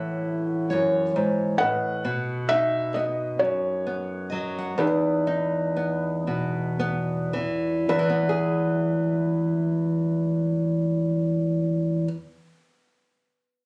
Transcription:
Already playing: nylon-string guitar A2 E3 E4, felt piano C#5 F#5
0.70 nylon-string guitar F#2, steel-string acoustic guitar C#5
1.16 nylon-string guitar G#2
1.58 nylon-string guitar A2, felt piano B4 D#5 F#5
2.05 nylon-string guitar B2
2.49 nylon-string guitar D#4, felt piano E5
2.94 nylon-string guitar B3, felt piano D#5
3.39 nylon-string guitar F#2, felt piano F#4 C#5
3.87 nylon-string guitar B3
4.30 nylon-string guitar F#3, steel-string acoustic guitar D#5
4.58 steel-string acoustic guitar F#5
4.78 nylon-string guitar E2, felt piano D#4 G#4 B4
5.27 nylon-string guitar D#4
5.76 nylon-string guitar B3
6.27 nylon-string guitar B2
6.79 nylon-string guitar B3
7.33 nylon-string guitar E3
7.89 nylon-string guitar E2, felt piano B4, steel-string acoustic guitar E5
7.99 nylon-string guitar E3
8.10 nylon-string guitar B3
8.29 nylon-string guitar G#4

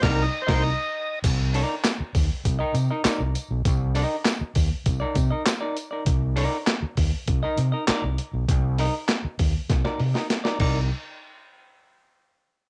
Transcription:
0.02 fingered electric bass C2, clean electric guitar D#4 A#4 D5, tonewheel organ A#4, kick, snare, crash
0.22 tonewheel organ D#5
0.42 tonewheel organ C5
0.47 fingered electric bass C2, clean electric guitar D#4 A#4 D#5, kick, snare, crash
0.62 tonewheel organ D#5
1.24 fingered electric bass C2, kick, closed hi-hat, crash, tambourine
1.54 clean electric guitar D#4 A#4 D5, open hi-hat, tambourine
1.84 snare, clap, closed hi-hat, tambourine
2.00 muted fingered electric bass stroke
2.15 fingered electric bass D#2, kick, open hi-hat, tambourine
2.45 fingered electric bass C2, kick, closed hi-hat, tambourine
2.59 clean electric guitar D#4 A#4 D#5
2.74 fingered electric bass C3, closed hi-hat, tambourine
2.91 clean electric guitar D#4 A#4 D#5
3.05 clean electric guitar D#4 A#4 D5, muted fingered electric bass stroke, snare, clap, closed hi-hat, tambourine
3.20 fingered electric bass C2
3.35 closed hi-hat, tambourine
3.51 fingered electric bass B1
3.65 fingered electric bass C2, kick, closed hi-hat, tambourine
3.95 clean electric guitar D#4 A#4 D#5, open hi-hat, tambourine
4.25 snare, clap, closed hi-hat, tambourine
4.41 muted fingered electric bass stroke
4.55 fingered electric bass D#2, kick, open hi-hat, tambourine
4.86 fingered electric bass C2, kick, closed hi-hat, tambourine
5.00 clean electric guitar D#4 A#4 D5
5.15 fingered electric bass C3, kick, closed hi-hat, tambourine
5.30 clean electric guitar D#4 A#4 D#5
5.46 snare, clap, closed hi-hat, tambourine
5.60 clean electric guitar D#4 A#4 D5
5.76 closed hi-hat, tambourine
5.91 clean electric guitar D#4 A#4 D5
6.06 fingered electric bass C2, kick, closed hi-hat
6.36 clean electric guitar D#4 A#4 D5, open hi-hat
6.67 snare, clap, closed hi-hat
6.82 muted fingered electric bass stroke
6.97 fingered electric bass D#2, kick, open hi-hat
7.27 fingered electric bass C2, kick, closed hi-hat
7.43 clean electric guitar D#4 A#4 D#5
7.57 fingered electric bass C3, closed hi-hat
7.72 clean electric guitar D#4 A#4 D#5
7.88 clean electric guitar D#4 A#4 D5, muted fingered electric bass stroke, snare, clap, closed hi-hat
8.04 fingered electric bass C2
8.18 closed hi-hat
8.33 fingered electric bass B1
8.49 fingered electric bass C2, kick, closed hi-hat
8.79 clean electric guitar D#4 A#4 D#5, open hi-hat
9.09 snare, clap, closed hi-hat
9.25 muted fingered electric bass stroke
9.39 fingered electric bass D#2, kick, open hi-hat
9.70 fingered electric bass C2, kick, snare, closed hi-hat
9.85 clean electric guitar D#4 A#4 D5, snare
10.00 fingered electric bass C3, open hi-hat
10.14 clean electric guitar D#4 A#4 D#5, snare
10.30 snare, closed hi-hat
10.44 clean electric guitar D#4 A#4 D5, snare
10.60 fingered electric bass C2, clean electric guitar D#4 A#4 D5, kick, crash

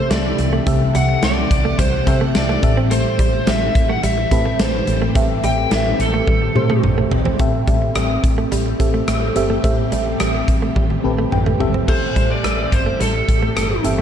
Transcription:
Already playing: fm electric piano C3 C4 G4 A4 E5, string machine E3 G3 A3 C4 G4, lead electric guitar C5
0.11 fretless electric bass C2, clean electric guitar A3, lead electric guitar D5, snare, closed hi-hat
0.39 fretless electric bass C2, muted clean electric guitar stroke, closed hi-hat
0.53 clean electric guitar A3
0.66 fretless electric bass C2, fm electric piano C3 C4 G4 A4 E5, clean electric guitar A3, string machine F#5, kick, closed hi-hat
0.95 fretless electric bass C2, clean electric guitar G3, lead electric guitar F#5, closed hi-hat
1.09 muted clean electric guitar stroke
1.23 fretless electric bass C2, clean electric guitar G3, lead electric guitar D5, snare, closed hi-hat
1.37 muted clean electric guitar stroke
1.51 fretless electric bass C2, kick, closed hi-hat
1.65 clean electric guitar A3
1.79 fretless electric bass C2, clean electric guitar G3, lead electric guitar C5, kick, closed hi-hat
1.93 muted clean electric guitar stroke
2.06 fretless electric bass C3, fm electric piano C4 G4 A4 E5, lead electric guitar C5, kick, closed hi-hat
2.21 clean electric guitar A3
2.35 fretless electric bass C2, lead electric guitar D5, snare, closed hi-hat
2.49 clean electric guitar A3
2.62 fretless electric bass A1, fm electric piano A2 C4 G4 A4 E5, string machine E3 C4 G4, muted clean electric guitar stroke, kick, closed hi-hat
2.77 clean electric guitar C4
2.91 clean electric guitar A3, lead electric guitar C5, closed hi-hat
3.19 fretless electric bass A1, clean electric guitar G3, kick, closed hi-hat
3.33 muted clean electric guitar stroke
3.47 fretless electric bass A1, clean electric guitar G3, lead electric guitar E5, snare, closed hi-hat
3.62 muted clean electric guitar stroke
3.75 fretless electric bass A1, kick, closed hi-hat
3.89 clean electric guitar A3, lead electric guitar F#5
4.03 fretless electric bass A1, clean electric guitar G3, lead electric guitar E5, closed hi-hat
4.18 muted clean electric guitar stroke
4.31 fretless electric bass A2, fm electric piano C4 G4 A4 B4, kick, closed hi-hat
4.46 clean electric guitar A3
4.59 fretless electric bass A1, clean electric guitar A3, lead electric guitar C5, snare, closed hi-hat
4.87 fretless electric bass A1, fm electric piano A2, muted clean electric guitar stroke, closed hi-hat
5.02 clean electric guitar A3
5.15 fretless electric bass A1, clean electric guitar A3, fm electric piano C4 G4 A4 E5, kick, closed hi-hat
5.43 fretless electric bass A1, clean electric guitar G3, lead electric guitar G5, closed hi-hat
5.58 muted clean electric guitar stroke
5.71 fretless electric bass A1, clean electric guitar G3, lead electric guitar E5, snare, closed hi-hat
5.86 muted clean electric guitar stroke
5.99 fretless electric bass A1, lead electric guitar A4, closed hi-hat
6.14 clean electric guitar A3
6.27 fretless electric bass A1, clean electric guitar G3, kick, high tom
6.42 muted clean electric guitar stroke
6.55 fretless electric bass A2, fm electric piano C4 G4 A4 C5, mid tom
6.70 clean electric guitar A3, mid tom
6.84 fretless electric bass A1, mid tom
6.98 clean electric guitar A3
7.11 fretless electric bass A1, muted clean electric guitar stroke, floor tom
7.25 clean electric guitar C4, floor tom
7.39 fretless electric bass A1, fm electric piano A2 C4 G4 A4 E5, string machine E3 G3 A3 C4 G4, clean electric guitar A3, kick, closed hi-hat
7.67 fretless electric bass A1, clean electric guitar G3, kick, closed hi-hat
7.82 muted clean electric guitar stroke
7.95 fretless electric bass A1, clean electric guitar G3, cross-stick, closed hi-hat
8.10 muted clean electric guitar stroke
8.24 fretless electric bass A1, kick, closed hi-hat
8.38 clean electric guitar A3
8.52 fretless electric bass A1, clean electric guitar G3, closed hi-hat
8.66 muted clean electric guitar stroke
8.79 fretless electric bass A1, fm electric piano C4 G4 A4 E5, kick, closed hi-hat
8.94 clean electric guitar A3
9.08 fretless electric bass A1, clean electric guitar A3, cross-stick, closed hi-hat
9.36 fretless electric bass G1, fm electric piano C4 G4 A4 E5, muted clean electric guitar stroke, closed hi-hat
9.50 clean electric guitar A3
9.63 fretless electric bass A1, fm electric piano A2 C4 G4 A4 E5, clean electric guitar A3, kick, closed hi-hat
9.92 fretless electric bass A1, clean electric guitar G3, closed hi-hat
10.06 muted clean electric guitar stroke
10.20 fretless electric bass A1, clean electric guitar G3, cross-stick, closed hi-hat
10.34 muted clean electric guitar stroke
10.48 fretless electric bass A1, kick, closed hi-hat
10.62 clean electric guitar A3
10.76 fretless electric bass A1, clean electric guitar G3, kick, high tom
10.90 muted clean electric guitar stroke, high tom
11.04 fretless electric bass A1, fm electric piano C4 G4 A4 B4
11.19 clean electric guitar A3
11.32 fretless electric bass A1, fm electric piano G5, mid tom
11.46 clean electric guitar A3, mid tom
11.60 fretless electric bass G1, fm electric piano C4 G4 A4 E5, muted clean electric guitar stroke, floor tom
11.74 clean electric guitar C4, floor tom
11.88 fretless electric bass A1, fm electric piano A2 C4 G4 A4 E5, string machine E3 G3 A3 C4 G4, clean electric guitar A3, lead electric guitar C5, kick, crash
12.16 fretless electric bass A1, clean electric guitar G3, kick, closed hi-hat
12.30 lead electric guitar D5, muted clean electric guitar stroke
12.44 fretless electric bass A1, clean electric guitar G3, cross-stick, closed hi-hat
12.58 muted clean electric guitar stroke
12.72 fretless electric bass G1, lead electric guitar C5, kick, closed hi-hat
12.86 clean electric guitar A3
13.00 fretless electric bass A1, clean electric guitar G3, lead electric guitar A4, closed hi-hat
13.14 muted clean electric guitar stroke
13.28 fretless electric bass A1, kick, closed hi-hat
13.42 clean electric guitar A3
13.57 fretless electric bass G1, clean electric guitar A3, cross-stick, closed hi-hat
13.84 fretless electric bass G1, fm electric piano C4 G4 A4 E5, muted clean electric guitar stroke, closed hi-hat
13.99 clean electric guitar A3

